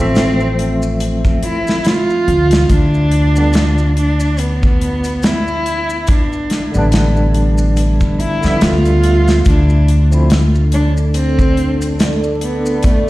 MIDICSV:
0, 0, Header, 1, 6, 480
1, 0, Start_track
1, 0, Tempo, 845070
1, 1531, Time_signature, 4, 2, 24, 8
1, 7440, End_track
2, 0, Start_track
2, 0, Title_t, "Analog synth pad"
2, 0, Program_c, 0, 89
2, 5372, Note_on_c, 0, 69, 72
2, 5373, Note_on_c, 0, 62, 81
2, 5374, Note_on_c, 0, 74, 74
2, 7440, Note_off_c, 0, 62, 0
2, 7440, Note_off_c, 0, 69, 0
2, 7440, Note_off_c, 0, 74, 0
2, 7440, End_track
3, 0, Start_track
3, 0, Title_t, "Cello"
3, 0, Program_c, 1, 42
3, 0, Note_on_c, 1, 60, 108
3, 573, Note_off_c, 1, 60, 0
3, 818, Note_on_c, 1, 64, 95
3, 1058, Note_on_c, 1, 65, 115
3, 1067, Note_off_c, 1, 64, 0
3, 1538, Note_on_c, 1, 62, 110
3, 1546, Note_off_c, 1, 65, 0
3, 2254, Note_off_c, 1, 62, 0
3, 2258, Note_on_c, 1, 62, 94
3, 2498, Note_on_c, 1, 59, 98
3, 2506, Note_off_c, 1, 62, 0
3, 2981, Note_on_c, 1, 64, 100
3, 2990, Note_off_c, 1, 59, 0
3, 3459, Note_on_c, 1, 62, 85
3, 3467, Note_off_c, 1, 64, 0
3, 3935, Note_off_c, 1, 62, 0
3, 4658, Note_on_c, 1, 64, 96
3, 4897, Note_on_c, 1, 65, 110
3, 4905, Note_off_c, 1, 64, 0
3, 5374, Note_off_c, 1, 65, 0
3, 5381, Note_on_c, 1, 62, 87
3, 5833, Note_off_c, 1, 62, 0
3, 6100, Note_on_c, 1, 62, 97
3, 6206, Note_off_c, 1, 62, 0
3, 6337, Note_on_c, 1, 60, 103
3, 6792, Note_off_c, 1, 60, 0
3, 7059, Note_on_c, 1, 59, 98
3, 7300, Note_on_c, 1, 57, 94
3, 7308, Note_off_c, 1, 59, 0
3, 7440, Note_off_c, 1, 57, 0
3, 7440, End_track
4, 0, Start_track
4, 0, Title_t, "Tine electric piano"
4, 0, Program_c, 2, 4
4, 0, Note_on_c, 2, 53, 81
4, 0, Note_on_c, 2, 57, 78
4, 0, Note_on_c, 2, 60, 79
4, 9, Note_on_c, 2, 76, 90
4, 1509, Note_off_c, 2, 53, 0
4, 1515, Note_off_c, 2, 57, 0
4, 1522, Note_off_c, 2, 60, 0
4, 1529, Note_off_c, 2, 76, 0
4, 1903, Note_on_c, 2, 50, 73
4, 1909, Note_on_c, 2, 55, 62
4, 1916, Note_on_c, 2, 59, 64
4, 1922, Note_on_c, 2, 62, 78
4, 2003, Note_off_c, 2, 50, 0
4, 2006, Note_off_c, 2, 55, 0
4, 2010, Note_off_c, 2, 59, 0
4, 2013, Note_off_c, 2, 62, 0
4, 3814, Note_on_c, 2, 50, 82
4, 3827, Note_on_c, 2, 55, 79
4, 3840, Note_on_c, 2, 59, 74
4, 3853, Note_on_c, 2, 62, 92
4, 4754, Note_off_c, 2, 50, 0
4, 4761, Note_off_c, 2, 55, 0
4, 4767, Note_off_c, 2, 59, 0
4, 4774, Note_off_c, 2, 62, 0
4, 4775, Note_on_c, 2, 50, 79
4, 4788, Note_on_c, 2, 55, 69
4, 4801, Note_on_c, 2, 59, 67
4, 4815, Note_on_c, 2, 76, 90
4, 5351, Note_off_c, 2, 50, 0
4, 5358, Note_off_c, 2, 55, 0
4, 5364, Note_off_c, 2, 59, 0
4, 5371, Note_off_c, 2, 76, 0
4, 5743, Note_on_c, 2, 53, 72
4, 5748, Note_on_c, 2, 57, 64
4, 5754, Note_on_c, 2, 60, 62
4, 5761, Note_on_c, 2, 64, 77
4, 5843, Note_off_c, 2, 53, 0
4, 5846, Note_off_c, 2, 57, 0
4, 5849, Note_off_c, 2, 60, 0
4, 5852, Note_off_c, 2, 64, 0
4, 7440, End_track
5, 0, Start_track
5, 0, Title_t, "Upright bass"
5, 0, Program_c, 3, 32
5, 0, Note_on_c, 3, 33, 75
5, 794, Note_off_c, 3, 33, 0
5, 1294, Note_on_c, 3, 38, 92
5, 1508, Note_off_c, 3, 38, 0
5, 1533, Note_on_c, 3, 38, 85
5, 3804, Note_off_c, 3, 38, 0
5, 3835, Note_on_c, 3, 33, 74
5, 4634, Note_off_c, 3, 33, 0
5, 4795, Note_on_c, 3, 41, 73
5, 4881, Note_off_c, 3, 41, 0
5, 4897, Note_on_c, 3, 38, 92
5, 5355, Note_off_c, 3, 38, 0
5, 5375, Note_on_c, 3, 38, 92
5, 7440, Note_off_c, 3, 38, 0
5, 7440, End_track
6, 0, Start_track
6, 0, Title_t, "Drums"
6, 86, Note_on_c, 9, 82, 68
6, 93, Note_on_c, 9, 42, 80
6, 95, Note_on_c, 9, 38, 110
6, 143, Note_off_c, 9, 82, 0
6, 150, Note_off_c, 9, 42, 0
6, 151, Note_off_c, 9, 38, 0
6, 227, Note_on_c, 9, 82, 34
6, 284, Note_off_c, 9, 82, 0
6, 335, Note_on_c, 9, 42, 59
6, 391, Note_off_c, 9, 42, 0
6, 468, Note_on_c, 9, 82, 76
6, 524, Note_off_c, 9, 82, 0
6, 568, Note_on_c, 9, 82, 54
6, 570, Note_on_c, 9, 42, 79
6, 625, Note_off_c, 9, 82, 0
6, 627, Note_off_c, 9, 42, 0
6, 708, Note_on_c, 9, 36, 77
6, 709, Note_on_c, 9, 82, 36
6, 764, Note_off_c, 9, 36, 0
6, 766, Note_off_c, 9, 82, 0
6, 810, Note_on_c, 9, 42, 68
6, 867, Note_off_c, 9, 42, 0
6, 950, Note_on_c, 9, 82, 73
6, 961, Note_on_c, 9, 38, 48
6, 1007, Note_off_c, 9, 82, 0
6, 1018, Note_off_c, 9, 38, 0
6, 1046, Note_on_c, 9, 82, 58
6, 1049, Note_on_c, 9, 42, 83
6, 1060, Note_on_c, 9, 38, 101
6, 1103, Note_off_c, 9, 82, 0
6, 1105, Note_off_c, 9, 42, 0
6, 1117, Note_off_c, 9, 38, 0
6, 1193, Note_on_c, 9, 82, 36
6, 1249, Note_off_c, 9, 82, 0
6, 1295, Note_on_c, 9, 42, 54
6, 1352, Note_off_c, 9, 42, 0
6, 1425, Note_on_c, 9, 42, 76
6, 1433, Note_on_c, 9, 82, 72
6, 1437, Note_on_c, 9, 38, 97
6, 1482, Note_off_c, 9, 42, 0
6, 1490, Note_off_c, 9, 82, 0
6, 1494, Note_off_c, 9, 38, 0
6, 1530, Note_on_c, 9, 42, 92
6, 1531, Note_on_c, 9, 36, 108
6, 1534, Note_on_c, 9, 82, 62
6, 1587, Note_off_c, 9, 42, 0
6, 1588, Note_off_c, 9, 36, 0
6, 1591, Note_off_c, 9, 82, 0
6, 1670, Note_on_c, 9, 82, 33
6, 1727, Note_off_c, 9, 82, 0
6, 1769, Note_on_c, 9, 42, 66
6, 1826, Note_off_c, 9, 42, 0
6, 1908, Note_on_c, 9, 82, 80
6, 1964, Note_off_c, 9, 82, 0
6, 2005, Note_on_c, 9, 82, 71
6, 2009, Note_on_c, 9, 42, 86
6, 2019, Note_on_c, 9, 38, 117
6, 2062, Note_off_c, 9, 82, 0
6, 2066, Note_off_c, 9, 42, 0
6, 2075, Note_off_c, 9, 38, 0
6, 2147, Note_on_c, 9, 82, 41
6, 2204, Note_off_c, 9, 82, 0
6, 2254, Note_on_c, 9, 42, 66
6, 2311, Note_off_c, 9, 42, 0
6, 2386, Note_on_c, 9, 82, 75
6, 2442, Note_off_c, 9, 82, 0
6, 2484, Note_on_c, 9, 82, 60
6, 2491, Note_on_c, 9, 42, 78
6, 2541, Note_off_c, 9, 82, 0
6, 2548, Note_off_c, 9, 42, 0
6, 2629, Note_on_c, 9, 82, 39
6, 2630, Note_on_c, 9, 36, 92
6, 2686, Note_off_c, 9, 82, 0
6, 2687, Note_off_c, 9, 36, 0
6, 2734, Note_on_c, 9, 42, 59
6, 2791, Note_off_c, 9, 42, 0
6, 2863, Note_on_c, 9, 82, 74
6, 2872, Note_on_c, 9, 42, 41
6, 2920, Note_off_c, 9, 82, 0
6, 2929, Note_off_c, 9, 42, 0
6, 2968, Note_on_c, 9, 82, 67
6, 2973, Note_on_c, 9, 42, 84
6, 2978, Note_on_c, 9, 38, 115
6, 3024, Note_off_c, 9, 82, 0
6, 3030, Note_off_c, 9, 42, 0
6, 3035, Note_off_c, 9, 38, 0
6, 3109, Note_on_c, 9, 82, 38
6, 3166, Note_off_c, 9, 82, 0
6, 3215, Note_on_c, 9, 42, 65
6, 3272, Note_off_c, 9, 42, 0
6, 3350, Note_on_c, 9, 82, 85
6, 3407, Note_off_c, 9, 82, 0
6, 3448, Note_on_c, 9, 82, 65
6, 3450, Note_on_c, 9, 42, 89
6, 3456, Note_on_c, 9, 36, 107
6, 3504, Note_off_c, 9, 82, 0
6, 3507, Note_off_c, 9, 42, 0
6, 3513, Note_off_c, 9, 36, 0
6, 3593, Note_on_c, 9, 82, 38
6, 3650, Note_off_c, 9, 82, 0
6, 3691, Note_on_c, 9, 42, 67
6, 3698, Note_on_c, 9, 38, 44
6, 3748, Note_off_c, 9, 42, 0
6, 3755, Note_off_c, 9, 38, 0
6, 3830, Note_on_c, 9, 82, 79
6, 3887, Note_off_c, 9, 82, 0
6, 3930, Note_on_c, 9, 42, 83
6, 3931, Note_on_c, 9, 82, 62
6, 3941, Note_on_c, 9, 38, 111
6, 3987, Note_off_c, 9, 42, 0
6, 3988, Note_off_c, 9, 82, 0
6, 3998, Note_off_c, 9, 38, 0
6, 4069, Note_on_c, 9, 82, 35
6, 4126, Note_off_c, 9, 82, 0
6, 4172, Note_on_c, 9, 42, 57
6, 4228, Note_off_c, 9, 42, 0
6, 4304, Note_on_c, 9, 82, 81
6, 4361, Note_off_c, 9, 82, 0
6, 4410, Note_on_c, 9, 82, 53
6, 4413, Note_on_c, 9, 42, 81
6, 4467, Note_off_c, 9, 82, 0
6, 4470, Note_off_c, 9, 42, 0
6, 4546, Note_on_c, 9, 82, 37
6, 4548, Note_on_c, 9, 36, 74
6, 4603, Note_off_c, 9, 82, 0
6, 4605, Note_off_c, 9, 36, 0
6, 4656, Note_on_c, 9, 42, 57
6, 4713, Note_off_c, 9, 42, 0
6, 4787, Note_on_c, 9, 82, 73
6, 4796, Note_on_c, 9, 38, 40
6, 4844, Note_off_c, 9, 82, 0
6, 4853, Note_off_c, 9, 38, 0
6, 4891, Note_on_c, 9, 82, 66
6, 4892, Note_on_c, 9, 42, 93
6, 4896, Note_on_c, 9, 38, 124
6, 4948, Note_off_c, 9, 82, 0
6, 4949, Note_off_c, 9, 42, 0
6, 4953, Note_off_c, 9, 38, 0
6, 5028, Note_on_c, 9, 82, 37
6, 5031, Note_on_c, 9, 42, 39
6, 5085, Note_off_c, 9, 82, 0
6, 5088, Note_off_c, 9, 42, 0
6, 5132, Note_on_c, 9, 42, 70
6, 5189, Note_off_c, 9, 42, 0
6, 5270, Note_on_c, 9, 82, 74
6, 5274, Note_on_c, 9, 38, 54
6, 5327, Note_off_c, 9, 82, 0
6, 5330, Note_off_c, 9, 38, 0
6, 5368, Note_on_c, 9, 82, 61
6, 5373, Note_on_c, 9, 36, 109
6, 5373, Note_on_c, 9, 42, 92
6, 5425, Note_off_c, 9, 82, 0
6, 5430, Note_off_c, 9, 36, 0
6, 5430, Note_off_c, 9, 42, 0
6, 5506, Note_on_c, 9, 82, 41
6, 5563, Note_off_c, 9, 82, 0
6, 5614, Note_on_c, 9, 42, 64
6, 5670, Note_off_c, 9, 42, 0
6, 5749, Note_on_c, 9, 82, 71
6, 5805, Note_off_c, 9, 82, 0
6, 5850, Note_on_c, 9, 42, 83
6, 5853, Note_on_c, 9, 82, 59
6, 5860, Note_on_c, 9, 38, 107
6, 5907, Note_off_c, 9, 42, 0
6, 5909, Note_off_c, 9, 82, 0
6, 5917, Note_off_c, 9, 38, 0
6, 5992, Note_on_c, 9, 82, 40
6, 6049, Note_off_c, 9, 82, 0
6, 6088, Note_on_c, 9, 42, 62
6, 6145, Note_off_c, 9, 42, 0
6, 6232, Note_on_c, 9, 82, 74
6, 6289, Note_off_c, 9, 82, 0
6, 6328, Note_on_c, 9, 82, 53
6, 6329, Note_on_c, 9, 42, 81
6, 6384, Note_off_c, 9, 82, 0
6, 6386, Note_off_c, 9, 42, 0
6, 6468, Note_on_c, 9, 36, 71
6, 6471, Note_on_c, 9, 82, 40
6, 6525, Note_off_c, 9, 36, 0
6, 6527, Note_off_c, 9, 82, 0
6, 6573, Note_on_c, 9, 42, 58
6, 6630, Note_off_c, 9, 42, 0
6, 6711, Note_on_c, 9, 82, 80
6, 6713, Note_on_c, 9, 42, 41
6, 6768, Note_off_c, 9, 82, 0
6, 6770, Note_off_c, 9, 42, 0
6, 6812, Note_on_c, 9, 82, 69
6, 6815, Note_on_c, 9, 42, 97
6, 6819, Note_on_c, 9, 38, 101
6, 6869, Note_off_c, 9, 82, 0
6, 6872, Note_off_c, 9, 42, 0
6, 6876, Note_off_c, 9, 38, 0
6, 6949, Note_on_c, 9, 82, 36
6, 7006, Note_off_c, 9, 82, 0
6, 7051, Note_on_c, 9, 42, 63
6, 7108, Note_off_c, 9, 42, 0
6, 7190, Note_on_c, 9, 82, 83
6, 7247, Note_off_c, 9, 82, 0
6, 7285, Note_on_c, 9, 42, 85
6, 7294, Note_on_c, 9, 36, 103
6, 7294, Note_on_c, 9, 82, 60
6, 7342, Note_off_c, 9, 42, 0
6, 7351, Note_off_c, 9, 36, 0
6, 7351, Note_off_c, 9, 82, 0
6, 7440, End_track
0, 0, End_of_file